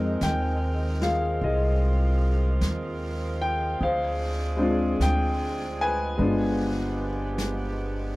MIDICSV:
0, 0, Header, 1, 5, 480
1, 0, Start_track
1, 0, Tempo, 1192843
1, 1532, Time_signature, 4, 2, 24, 8
1, 3284, End_track
2, 0, Start_track
2, 0, Title_t, "Grand piano"
2, 0, Program_c, 0, 0
2, 0, Control_c, 0, 64, 127
2, 0, Note_on_c, 0, 56, 39
2, 0, Note_on_c, 0, 60, 37
2, 0, Note_on_c, 0, 63, 38
2, 0, Note_on_c, 0, 75, 51
2, 0, Note_on_c, 0, 80, 68
2, 92, Note_on_c, 0, 79, 69
2, 103, Note_off_c, 0, 80, 0
2, 391, Note_off_c, 0, 79, 0
2, 407, Note_on_c, 0, 65, 33
2, 414, Note_on_c, 0, 77, 64
2, 415, Note_on_c, 0, 68, 38
2, 557, Note_off_c, 0, 75, 0
2, 578, Note_on_c, 0, 75, 60
2, 579, Note_off_c, 0, 77, 0
2, 580, Note_off_c, 0, 68, 0
2, 586, Note_on_c, 0, 68, 41
2, 1040, Note_off_c, 0, 75, 0
2, 1374, Note_on_c, 0, 79, 80
2, 1520, Note_off_c, 0, 56, 0
2, 1524, Note_off_c, 0, 68, 0
2, 1524, Note_off_c, 0, 79, 0
2, 1526, Note_off_c, 0, 60, 0
2, 1531, Note_off_c, 0, 65, 0
2, 1534, Note_off_c, 0, 63, 0
2, 1537, Control_c, 0, 64, 0
2, 1541, Note_on_c, 0, 77, 70
2, 1544, Note_on_c, 0, 72, 53
2, 1607, Control_c, 0, 64, 127
2, 1837, Note_on_c, 0, 56, 47
2, 1844, Note_on_c, 0, 60, 44
2, 1850, Note_on_c, 0, 62, 44
2, 1859, Note_on_c, 0, 65, 55
2, 2021, Note_on_c, 0, 79, 83
2, 2031, Note_off_c, 0, 77, 0
2, 2339, Note_on_c, 0, 80, 89
2, 2341, Note_off_c, 0, 79, 0
2, 2344, Note_on_c, 0, 71, 57
2, 2478, Note_off_c, 0, 56, 0
2, 2482, Note_off_c, 0, 72, 0
2, 2484, Note_on_c, 0, 56, 47
2, 2490, Note_off_c, 0, 60, 0
2, 2490, Note_on_c, 0, 59, 41
2, 2491, Note_off_c, 0, 62, 0
2, 2497, Note_off_c, 0, 65, 0
2, 2497, Control_c, 0, 64, 0
2, 2497, Note_on_c, 0, 62, 45
2, 2503, Note_on_c, 0, 65, 50
2, 2561, Control_c, 0, 64, 127
2, 3273, Note_off_c, 0, 80, 0
2, 3275, Note_off_c, 0, 71, 0
2, 3284, Note_off_c, 0, 56, 0
2, 3284, Note_off_c, 0, 59, 0
2, 3284, Note_off_c, 0, 62, 0
2, 3284, Note_off_c, 0, 65, 0
2, 3284, End_track
3, 0, Start_track
3, 0, Title_t, "Saxophone section"
3, 0, Program_c, 1, 65
3, 0, Note_on_c, 1, 53, 54
3, 0, Note_on_c, 1, 56, 53
3, 0, Note_on_c, 1, 60, 58
3, 0, Note_on_c, 1, 63, 54
3, 0, Note_on_c, 1, 70, 65
3, 498, Note_off_c, 1, 63, 0
3, 566, Note_on_c, 1, 65, 58
3, 1520, Note_off_c, 1, 65, 0
3, 1521, Note_off_c, 1, 70, 0
3, 1530, Note_on_c, 1, 68, 67
3, 1532, Note_on_c, 1, 62, 48
3, 2477, Note_off_c, 1, 60, 0
3, 2481, Note_off_c, 1, 68, 0
3, 2482, Note_off_c, 1, 62, 0
3, 2498, Note_on_c, 1, 59, 58
3, 2498, Note_on_c, 1, 67, 74
3, 2499, Note_on_c, 1, 62, 57
3, 3284, Note_off_c, 1, 53, 0
3, 3284, Note_off_c, 1, 56, 0
3, 3284, Note_off_c, 1, 59, 0
3, 3284, Note_off_c, 1, 62, 0
3, 3284, Note_off_c, 1, 67, 0
3, 3284, End_track
4, 0, Start_track
4, 0, Title_t, "Upright bass"
4, 0, Program_c, 2, 32
4, 0, Note_on_c, 2, 41, 62
4, 67, Note_off_c, 2, 41, 0
4, 86, Note_on_c, 2, 39, 60
4, 553, Note_off_c, 2, 39, 0
4, 569, Note_on_c, 2, 36, 69
4, 1035, Note_off_c, 2, 36, 0
4, 1050, Note_on_c, 2, 39, 57
4, 1515, Note_off_c, 2, 39, 0
4, 1531, Note_on_c, 2, 38, 66
4, 1996, Note_off_c, 2, 38, 0
4, 2011, Note_on_c, 2, 38, 62
4, 2475, Note_off_c, 2, 38, 0
4, 2491, Note_on_c, 2, 31, 74
4, 3284, Note_off_c, 2, 31, 0
4, 3284, End_track
5, 0, Start_track
5, 0, Title_t, "Drums"
5, 84, Note_on_c, 9, 25, 33
5, 84, Note_on_c, 9, 38, 36
5, 84, Note_on_c, 9, 44, 39
5, 125, Note_off_c, 9, 38, 0
5, 125, Note_off_c, 9, 44, 0
5, 408, Note_on_c, 9, 38, 23
5, 448, Note_off_c, 9, 38, 0
5, 568, Note_off_c, 9, 25, 0
5, 568, Note_on_c, 9, 25, 30
5, 1051, Note_off_c, 9, 25, 0
5, 1051, Note_on_c, 9, 25, 27
5, 1051, Note_on_c, 9, 38, 38
5, 1051, Note_on_c, 9, 44, 45
5, 1092, Note_off_c, 9, 38, 0
5, 1092, Note_off_c, 9, 44, 0
5, 1533, Note_off_c, 9, 25, 0
5, 1533, Note_on_c, 9, 25, 35
5, 2015, Note_off_c, 9, 25, 0
5, 2015, Note_on_c, 9, 25, 31
5, 2015, Note_on_c, 9, 38, 36
5, 2015, Note_on_c, 9, 44, 43
5, 2055, Note_off_c, 9, 38, 0
5, 2055, Note_off_c, 9, 44, 0
5, 2494, Note_off_c, 9, 25, 0
5, 2494, Note_on_c, 9, 25, 38
5, 2971, Note_off_c, 9, 25, 0
5, 2971, Note_on_c, 9, 25, 30
5, 2971, Note_on_c, 9, 38, 39
5, 2971, Note_on_c, 9, 44, 54
5, 3011, Note_off_c, 9, 38, 0
5, 3011, Note_off_c, 9, 44, 0
5, 3284, Note_off_c, 9, 25, 0
5, 3284, End_track
0, 0, End_of_file